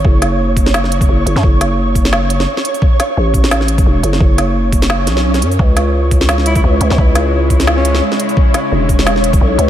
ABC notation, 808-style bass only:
X:1
M:4/4
L:1/16
Q:"Swing 16ths" 1/4=173
K:F#dor
V:1 name="808-style bass" clef=bass
F,,,12 F,,,2 F,,, F,, | F,,,12 z4 | z4 A,,,8 E,,,2 F,,,2 | F,,,8- F,,,2 B,,,4 F,,2 |
C,,12 C,,2 C,, C,, | C,,12 z4 | z4 E,,,8 B,,,2 C,,2 |]